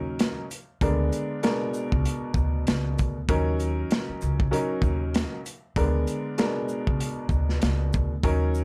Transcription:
0.00 0.29 D#2 loud
0.00 0.43 F#3 medium
0.00 0.43 C#4 medium
0.00 0.44 D#4 medium
0.00 0.44 A#4 loud
0.19 snare loud
0.19 closed hi-hat medium
0.51 closed hi-hat medium
0.51 shaker medium
0.81 1.08 D2 loud
0.81 1.39 D3 medium
0.81 1.39 G#3 medium
0.81 1.39 B3 medium
0.81 1.39 D4 medium
0.81 1.39 A#4 loud
0.81 kick loud
0.81 closed hi-hat medium
1.12 closed hi-hat medium
1.12 shaker soft
1.43 3.15 B2 medium
1.43 3.16 G#3 medium
1.43 3.16 B3 medium
1.43 3.16 D4 medium
1.43 3.16 A#4 loud
1.43 snare loud
1.43 closed hi-hat medium
1.74 shaker medium
1.92 2.04 C#2 medium
1.92 kick medium
2.05 closed hi-hat medium
2.34 2.62 D2 loud
2.34 kick medium
2.34 shaker soft
2.67 2.94 C#2 medium
2.67 snare loud
2.67 closed hi-hat medium
2.98 3.25 D2 medium
2.98 kick medium
2.98 closed hi-hat medium
2.98 shaker medium
3.29 3.82 D#2 loud
3.29 4.44 F#3 loud
3.29 4.44 C#4 medium
3.29 4.44 D#4 medium
3.29 4.44 A#4 loud
3.29 kick loud
3.29 closed hi-hat medium
3.60 closed hi-hat soft
3.60 shaker medium
3.91 snare loud
3.91 closed hi-hat medium
4.09 muted upright bass stroke soft
4.21 4.48 C#2 medium
4.21 shaker medium
4.40 kick medium
4.51 5.38 F#3 medium
4.51 5.38 C#4 medium
4.51 5.38 D#4 medium
4.51 5.39 A#4 loud
4.51 closed hi-hat medium
4.82 5.24 D#2 medium
4.82 kick medium
4.82 shaker soft
5.14 snare loud
5.14 closed hi-hat medium
5.46 closed hi-hat medium
5.46 shaker medium
5.76 6.03 D2 loud
5.76 6.34 D3 medium
5.76 6.34 G#3 medium
5.76 6.34 B3 medium
5.76 6.34 D4 medium
5.76 6.34 A#4 loud
5.76 kick loud
5.76 closed hi-hat medium
6.07 closed hi-hat soft
6.07 shaker soft
6.38 8.10 B2 medium
6.38 8.11 G#3 medium
6.38 8.11 B3 medium
6.38 8.11 D4 medium
6.38 8.11 A#4 loud
6.38 snare loud
6.38 closed hi-hat medium
6.69 shaker medium
6.87 6.99 C#2 medium
6.87 kick medium
7.00 closed hi-hat medium
7.29 7.57 D2 medium
7.29 kick medium
7.29 shaker soft
7.49 snare soft
7.62 7.89 C#2 medium
7.62 snare loud
7.62 closed hi-hat medium
7.93 8.20 D2 loud
7.93 kick medium
7.93 shaker medium
8.23 8.64 D#2 loud
8.23 8.64 F#3 medium
8.23 8.64 C#4 medium
8.23 8.64 D#4 medium
8.23 8.64 A#4 loud
8.23 kick loud
8.23 closed hi-hat medium
8.55 shaker medium

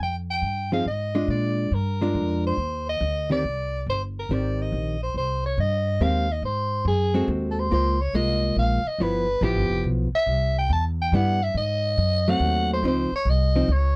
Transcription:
0.00 0.41 F2 medium
0.00 0.15 G5 medium
0.30 0.70 G5 medium
0.42 0.84 G2 medium
0.72 0.85 F3 medium
0.72 0.85 C4 soft
0.72 0.85 D#4 medium
0.72 0.86 G#4 medium
0.72 0.86 F5 medium
0.86 1.27 G#2 medium
0.86 1.27 D#5 medium
1.15 1.69 G#3 medium
1.15 1.69 D4 medium
1.15 1.70 F4 medium
1.28 1.70 A#2 medium
1.28 1.76 D5 medium
1.71 2.13 G2 medium
1.71 2.45 A#4 medium
2.01 2.55 G#3 medium
2.01 2.56 D4 medium
2.01 2.56 F4 medium
2.14 2.56 F2 medium
2.47 2.85 C5 medium
2.57 2.99 D#2 medium
2.89 3.28 D#5 medium
3.01 3.42 D2 medium
3.30 3.42 D#3 medium
3.30 3.43 C4 medium
3.30 3.43 G4 medium
3.30 3.43 A#4 medium
3.30 3.84 D5 medium
3.44 3.85 C2 medium
3.87 4.28 G1 medium
3.87 4.02 C5 medium
4.19 4.35 A#4 medium
4.29 4.71 G#1 medium
4.29 4.96 D#3 soft
4.29 4.96 C4 soft
4.29 4.96 G4 soft
4.29 4.97 A#4 medium
4.33 4.63 D5 medium
4.62 5.02 D#5 medium
4.72 5.14 A#1 medium
5.03 5.15 C5 medium
5.14 5.56 C2 medium
5.14 5.43 C5 medium
5.46 5.58 C#5 medium
5.58 5.99 G2 medium
5.58 6.04 D#5 medium
6.00 6.42 D#2 medium
6.00 6.27 G#3 medium
6.00 6.27 C4 medium
6.00 6.27 G4 medium
6.00 6.27 A#4 medium
6.00 6.34 F5 medium
6.32 6.45 D#5 medium
6.42 6.84 G#2 medium
6.42 6.84 C5 medium
6.85 7.27 F#2 medium
6.85 7.27 G#4 medium
7.14 7.68 G#3 medium
7.14 7.69 C4 medium
7.14 7.69 F#4 medium
7.14 7.69 A4 medium
7.28 7.70 D#2 medium
7.51 7.61 A4 medium
7.59 7.72 C5 medium
7.71 8.12 C#2 medium
7.71 7.97 G#3 medium
7.71 7.97 A#3 medium
7.71 7.98 F4 medium
7.71 8.03 C5 medium
8.01 8.16 C#5 medium
8.13 8.55 C2 medium
8.13 8.80 G#3 medium
8.13 8.80 A#3 medium
8.13 8.81 F4 medium
8.13 8.57 D#5 medium
8.56 8.83 A#1 medium
8.56 8.89 F5 medium
8.85 9.04 D#5 medium
8.85 muted upright bass stroke soft
8.98 9.40 G1 medium
8.98 9.26 F3 medium
8.98 9.26 B3 medium
8.98 9.26 E4 medium
8.98 9.45 B4 medium
9.41 9.55 A1 medium
9.41 10.08 F3 medium
9.41 10.08 B3 medium
9.41 10.09 E4 medium
9.41 9.85 G4 medium
9.55 9.69 G1 medium
9.69 9.83 F1 medium
9.84 10.11 B1 medium
10.13 10.54 E5 loud
10.13 muted upright bass stroke soft
10.26 10.68 C2 medium
10.59 10.70 G5 loud
10.69 11.11 E2 medium
10.69 10.85 A5 loud
11.02 11.17 G5 medium
11.12 11.54 G2 medium
11.12 11.39 G3 medium
11.12 11.40 B3 medium
11.12 11.40 E4 medium
11.12 11.45 F#5 loud
11.43 11.56 E5 medium
11.54 11.96 G#2 medium
11.54 12.31 D#5 loud
11.98 12.39 F#2 medium
12.28 12.81 F#3 medium
12.28 12.82 A3 medium
12.28 12.82 C4 medium
12.28 12.71 F#5 loud
12.40 12.82 D#2 medium
12.73 12.85 C5 medium
12.83 13.10 C#2 medium
12.83 13.10 F3 medium
12.83 13.10 C4 medium
12.83 13.10 D#4 medium
12.88 13.13 C5 medium
13.12 13.31 C#5 medium
13.12 muted upright bass stroke soft
13.25 13.67 C2 medium
13.30 13.73 D#5 medium
13.56 13.68 F3 medium
13.56 13.68 C4 medium
13.56 13.68 D#4 medium
13.68 13.96 C#2 medium
13.68 13.96 C#5 medium

